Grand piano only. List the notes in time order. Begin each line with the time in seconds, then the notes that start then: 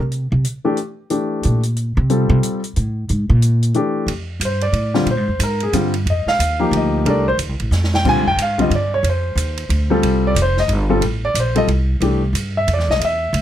0.64 E3 A3 D4 G4
1.10 E3 A3 D4 G4
2.10 G3 C4 F4 A4
3.75 E3 A3 D4 G4
4.45 C5
4.62 D5
4.94 D3 G3 C4 F4
5.11 C5
5.43 A#4
5.63 G#4
5.73 D3 G3 C4 F4
6.10 D#5
6.28 F5
6.59 F3 A#3 D#4 G4
6.77 D#5
7.06 A3 D4 G4 A#4 D5
7.28 C5
7.95 G5
8.05 D3 G3 C4 F4 G#5
8.28 G5
8.42 F5
8.58 D3 G3 C4 F4 D#5
8.75 D5
8.94 C#5
9.09 C5
9.90 G3 C4 F4 A4
10.27 D5
10.42 C5
10.60 D#5
10.89 G3 C4 F4 A4
11.25 D5
11.40 C5
11.55 G3 C4 F4 A4 D#5
12.02 E3 A3 D4 G4
12.57 E5
12.73 D5
12.91 D#5
13.01 D#5
13.05 E5